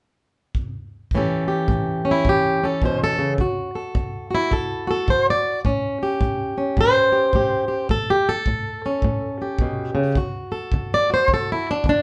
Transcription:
0.55 kick
1.11 E3, kick
1.15 A2 C#4 G4 A4
1.48 G4
1.68 A2, kick
2.05 C#4
2.11 E4
2.25 A2, kick
2.29 G4
2.64 C#4 A4
2.82 B2 C5, kick
3.04 A4
3.18 C#3
3.38 D3 F#4, kick
3.75 A4
3.95 D3, kick
4.31 F#4
4.35 E4
4.51 D3 A4, kick
4.87 F#4 A4
5.08 D3 C5, kick
5.30 D5
5.65 A2 C#4, kick
6.03 G4
6.21 A2, kick
6.58 C#4
6.77 A2 C5, kick
7.12 G4
7.33 A2 G4, kick
7.68 G4
7.89 A2 A4, kick
8.10 G4
8.29 A4
8.46 A2, kick
8.86 C#4
9.02 A2, kick
9.42 G4
9.59 B2, kick
9.95 C#3
10.15 D3 F#4, kick
10.52 A4
10.72 D3, kick
10.94 D5
11.10 F#4 C5
11.28 D3, kick
11.34 A4
11.52 E4
11.71 D4
11.84 D3, kick
11.89 D4

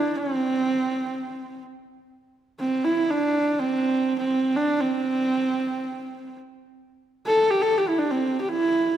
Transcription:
Already playing: D4
0.18 C4
2.60 C4
2.85 E4
3.10 D4
3.59 C4
4.19 C4
4.56 D4
4.80 C4
7.27 A4
7.51 G4
7.62 A4
7.78 G4
7.88 E4
7.99 D4
8.11 C4
8.41 G4
8.49 E4

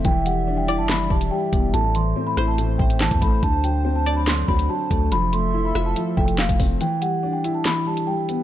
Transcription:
Already playing: E5
0.05 E1 E3 G3 D5 G5, kick, closed hi-hat
0.25 G3 F#5, closed hi-hat
0.47 D4
0.57 G5
0.68 E4 D5, closed hi-hat
0.78 F#1 A5
0.89 E3 B5, snare, clap, closed hi-hat
1.10 E1 G3 A5, kick
1.21 closed hi-hat
1.31 G3 G5
1.53 E1 B3, kick, closed hi-hat
1.73 A1 A2 A3 C5 A5, closed hi-hat
1.95 E3 C6, closed hi-hat
2.16 C4
2.27 B5
2.37 A1 E4 C5, cross-stick, closed hi-hat
2.48 A5
2.58 A2, closed hi-hat
2.78 A1 E3 G5, kick
2.90 closed hi-hat
3.00 E3 A5, snare, clap
3.11 E2, kick, closed hi-hat
3.22 A1 A3 B5, kick, closed hi-hat
3.43 D2 D3 F#3 D4 A5, kick, closed hi-hat
3.64 F#3 G5, closed hi-hat
3.85 C4
3.96 A5
4.06 D4 D5, closed hi-hat
4.16 B5
4.27 D3 C6, snare, clap, closed hi-hat
4.48 D2 F#3 B5, kick
4.59 closed hi-hat
4.69 F#3 A5
4.90 D2 A3, kick, closed hi-hat
5.12 F1 F3 A4 E5 B5, closed hi-hat
5.33 A3 C6, closed hi-hat
5.54 E4
5.65 B5
5.75 F1 F4 E5, cross-stick, closed hi-hat
5.86 A5
5.96 F3, closed hi-hat
6.17 F1 A3 G5, kick
6.28 closed hi-hat
6.38 E1 A3 F5, snare, clap
6.49 F1, kick, closed hi-hat
6.59 F1 C4, kick, open hi-hat
6.81 E3 G5, closed hi-hat
7.01 G3 F#5, closed hi-hat
7.23 D4
7.33 G5
7.44 E4, closed hi-hat
7.54 A5
7.65 E3 B5, snare, clap, closed hi-hat
7.86 G3 A5
7.97 closed hi-hat
8.07 G3 G5
8.29 B3, closed hi-hat

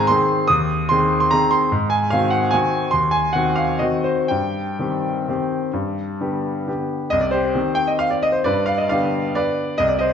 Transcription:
Already playing: G#2 D#3 C4 G#4 G#5 A#5 C6
0.07 D#3 C4 G#4 C6
0.48 D#2 D#6
0.89 D#3 C4 G#4 C6
1.20 C6
1.31 D#3 C4 G#4 A#5
1.51 C6
1.72 G#2
1.90 G#5
2.10 D#3 C4 F#4 F5
2.30 F#5
2.51 D#3 C4 F#4 G#5
2.91 D#2 C6
3.11 G#5
3.33 D#3 C4 F#4 F#5
3.56 F5
3.79 D#3 C4 F#4 D#5
4.04 C5
4.28 G2 G5
4.79 D#3 C4 G4
5.28 D#3 C4 G4
5.73 G2
6.21 D3 B3 G4
6.67 D3 B3 G4
7.10 C2 D#5
7.21 D5
7.31 G4 C5
7.55 D#3 C4 G4
7.75 G5
7.87 D#5
7.99 F5
8.11 D5
8.23 D#5
8.32 C5
8.44 G2 B4 D5
8.66 F5
8.78 D#5
8.89 D3 B3 G4 D5 F5
9.35 B4 D5
9.78 C2 D#5
9.88 D5
9.99 C5 D#5

